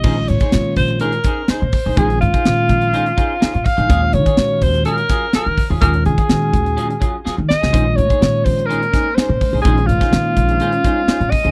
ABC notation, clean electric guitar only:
X:1
M:4/4
L:1/16
Q:1/4=125
K:Bbm
V:1 name="Clean electric guitar"
[DEAc] z2 [EAc] z4 [DEAc] z [DEAc] z [DEAc] z2 [EAc] | [DEAc] z2 [EAc] z4 [DEAc] z [DEAc] z [DEAc] z2 [EAc] | [G,DFA] z2 [DFA] z4 [G,DFA] z [G,DFA] z [G,DFA] z2 [DFA] | [G,DFA] z2 [DFA] z4 [G,DFA] z [G,DFA] z [G,DFA] z2 [DFA] |
[DEAc] z2 [EAc] z4 [DEAc] z [DEAc] z [DEAc] z2 [EAc] | [DEAc] z2 [EAc] z4 [DEAc] z [DEAc] z [DEAc] z2 [EAc] |]